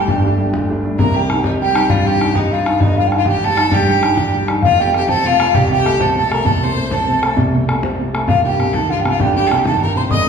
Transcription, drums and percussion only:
0.08 bodhran medium
0.25 bodhran soft
0.54 bodhran medium
0.99 bodhran loud
1.30 bodhran medium
1.44 bodhran medium
1.75 bodhran medium
1.90 bodhran loud
2.07 bodhran soft
2.21 bodhran medium
2.35 bodhran loud
2.52 bodhran soft
2.66 bodhran medium
2.81 bodhran medium
3.12 bodhran medium
3.26 bodhran medium
3.57 bodhran medium
3.72 bodhran medium
3.88 bodhran soft
4.03 bodhran medium
4.17 bodhran loud
4.34 bodhran soft
4.48 bodhran medium
4.62 bodhran medium
4.94 bodhran medium
5.09 bodhran medium
5.40 bodhran medium
5.54 bodhran loud
5.72 bodhran soft
5.86 bodhran medium
6.01 bodhran medium
6.17 bodhran soft
6.32 bodhran medium
6.46 bodhran medium
6.91 bodhran medium
7.23 bodhran medium
7.37 bodhran medium
7.54 bodhran soft
7.69 bodhran medium
7.83 bodhran medium
8.00 bodhran soft
8.15 bodhran medium
8.29 bodhran medium
8.60 bodhran medium
8.74 bodhran medium
9.05 bodhran medium
9.20 bodhran medium
9.37 bodhran soft
9.51 bodhran medium
9.65 bodhran medium
9.82 bodhran soft
10.11 bodhran medium

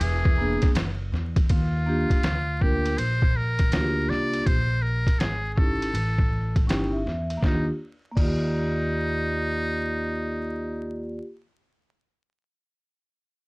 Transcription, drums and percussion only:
0.01 ride medium
0.25 kick medium
0.62 kick medium
0.62 snare soft
0.62 ride medium
0.75 snare loud
0.75 hi-hat pedal medium
0.75 ride medium
1.14 snare soft
1.36 kick loud
1.36 ride medium
1.49 kick loud
1.49 ride medium
2.10 kick medium
2.10 ride medium
2.23 snare loud
2.23 hi-hat pedal soft
2.23 ride medium
2.61 kick medium
2.85 ride medium
2.98 ride medium
3.22 kick medium
3.59 kick medium
3.59 ride medium
3.72 snare loud
3.72 hi-hat pedal soft
3.72 ride medium
4.11 snare soft
4.33 ride medium
4.46 kick loud
4.46 ride medium
5.07 kick medium
5.07 ride medium
5.20 snare loud
5.20 hi-hat pedal soft
5.20 ride medium
5.58 kick medium
5.82 ride medium
5.95 ride medium
6.18 kick medium
6.56 kick medium
6.56 ride medium
6.69 snare loud
6.69 hi-hat pedal soft
6.69 ride medium
7.07 snare soft
7.30 ride soft
7.43 kick medium
7.43 snare medium
8.17 kick medium
8.17 crash medium

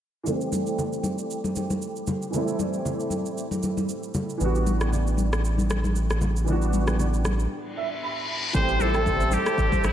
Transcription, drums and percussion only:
0.27 low conga medium
0.27 shaker medium
0.41 shaker soft
0.52 high conga medium
0.52 shaker loud
0.67 shaker soft
0.78 low conga medium
0.78 shaker medium
0.93 shaker medium
1.03 high conga medium
1.03 shaker medium
1.19 shaker medium
1.31 shaker medium
1.44 high conga medium
1.44 shaker medium
1.56 high conga medium
1.56 shaker loud
1.70 high conga medium
1.70 shaker medium
1.82 shaker medium
1.96 shaker soft
2.07 high conga medium
2.07 low conga medium
2.07 shaker medium
2.22 shaker medium
2.34 low conga medium
2.34 shaker medium
2.48 shaker soft
2.59 high conga medium
2.59 shaker loud
2.74 shaker soft
2.85 low conga medium
2.85 shaker medium
3.00 shaker soft
3.10 high conga medium
3.10 shaker loud
3.26 shaker medium
3.38 shaker medium
3.51 high conga medium
3.51 shaker medium
3.63 high conga medium
3.63 shaker loud
3.77 high conga medium
3.77 shaker medium
3.89 shaker medium
4.03 shaker soft
4.14 high conga medium
4.14 low conga medium
4.14 shaker medium
4.30 shaker medium
4.41 low conga medium
4.41 shaker medium
4.55 shaker soft
4.66 high conga medium
4.66 shaker loud
4.81 cross-stick medium
4.81 shaker soft
4.92 low conga medium
4.92 shaker medium
5.07 shaker medium
5.17 high conga medium
5.17 shaker medium
5.33 cross-stick medium
5.33 shaker medium
5.45 shaker medium
5.58 high conga medium
5.58 shaker medium
5.70 cross-stick loud
5.70 high conga medium
5.70 shaker loud
5.84 high conga medium
5.84 shaker medium
5.96 shaker medium
6.10 cross-stick medium
6.10 shaker soft
6.21 high conga medium
6.21 low conga medium
6.21 shaker medium
6.37 shaker medium
6.48 low conga medium
6.48 shaker medium
6.62 shaker soft
6.73 high conga medium
6.73 shaker loud
6.87 cross-stick medium
6.87 high conga soft
6.87 shaker soft
6.99 low conga medium
6.99 shaker medium
7.14 shaker medium
7.24 cross-stick medium
7.24 high conga medium
7.24 shaker medium
7.40 shaker medium
8.54 kick loud
8.54 low conga medium
8.54 shaker medium
8.69 shaker soft
8.80 high conga medium
8.80 shaker loud
8.94 cross-stick medium
8.94 high conga medium
8.94 shaker soft
9.06 kick medium
9.06 low conga medium
9.06 shaker medium
9.21 shaker medium
9.31 high conga medium
9.31 shaker loud
9.46 cross-stick loud
9.46 shaker medium
9.58 kick loud
9.58 shaker medium
9.72 kick medium
9.72 high conga medium
9.72 shaker medium
9.84 cross-stick loud
9.84 high conga medium
9.84 shaker loud

